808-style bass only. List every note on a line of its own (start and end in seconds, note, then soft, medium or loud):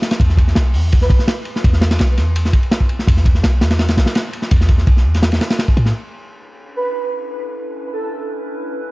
0.20 0.55 E2 medium
0.56 0.76 B1 medium
0.74 1.09 E2 loud
1.10 1.18 B1 loud
1.64 1.99 E2 loud
2.00 2.19 B1 medium
2.18 2.52 E2 medium
3.08 3.42 E2 loud
3.44 3.63 B1 medium
3.62 3.96 E2 medium
3.97 4.06 B1 loud
4.52 4.86 E2 loud
4.87 5.07 B1 medium
5.05 5.40 E2 loud
5.77 5.93 A2 loud